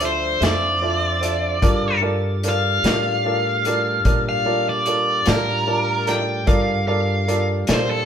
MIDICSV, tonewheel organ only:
0, 0, Header, 1, 2, 480
1, 0, Start_track
1, 0, Tempo, 807863
1, 970, Time_signature, 12, 3, 24, 8
1, 4784, End_track
2, 0, Start_track
2, 0, Title_t, "Tonewheel organ"
2, 0, Program_c, 0, 16
2, 0, Note_on_c, 0, 53, 60
2, 0, Note_on_c, 0, 62, 61
2, 0, Note_on_c, 0, 72, 61
2, 0, Note_on_c, 0, 76, 59
2, 945, Note_off_c, 0, 53, 0
2, 945, Note_off_c, 0, 62, 0
2, 945, Note_off_c, 0, 72, 0
2, 945, Note_off_c, 0, 76, 0
2, 970, Note_on_c, 0, 81, 55
2, 971, Note_on_c, 0, 65, 60
2, 972, Note_on_c, 0, 55, 61
2, 972, Note_on_c, 0, 62, 59
2, 3828, Note_off_c, 0, 62, 0
2, 3828, Note_off_c, 0, 65, 0
2, 3828, Note_off_c, 0, 81, 0
2, 3829, Note_off_c, 0, 55, 0
2, 3840, Note_on_c, 0, 65, 59
2, 3842, Note_on_c, 0, 62, 57
2, 3844, Note_on_c, 0, 55, 59
2, 4784, Note_off_c, 0, 55, 0
2, 4784, Note_off_c, 0, 62, 0
2, 4784, Note_off_c, 0, 65, 0
2, 4784, End_track
0, 0, End_of_file